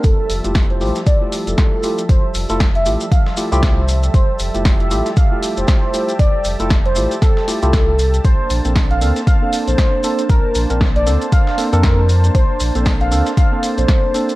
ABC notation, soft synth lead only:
X:1
M:4/4
L:1/16
Q:"Swing 16ths" 1/4=117
K:F
V:1 name="Soft synth lead"
A2 z3 c2 z d2 z A4 z | c2 z3 e2 z f2 z c4 z | c2 z3 e2 z f2 z c4 z | d2 z3 c2 z A2 z A4 z |
c2 z3 f2 z f2 z c4 z | B2 z3 d2 z f2 z B4 z | c2 z3 f2 z f2 z c4 z |]